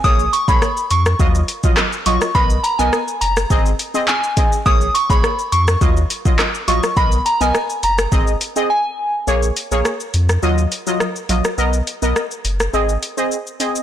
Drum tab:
HH |--x---x---x---x-|--x---x---x---x-|--x---x---x---x-|--x---x---x-----|
SH |xxxxxxxxxxxxxxxx|xxxxxxxxxxxxxxxx|xxxxxxxxxxxxxxxx|xxxxxxxxxxxx----|
CP |------------x---|------------x---|------------x---|----------------|
SD |----r--r----r--r|----r--r--------|----r--r----r--r|----r--r--------|
BD |o--o----o--o----|o-------o-----o-|o--o----o--o----|o-------o-------|

HH |--x---x---x---x-|--x---x---x---x-|
SH |xxxxxxxxxxxxxxxx|xxxxxxxxxxxxxxxx|
CP |----------------|----------------|
SD |----r--r----r--r|----r--r--------|
BD |----------------|----------------|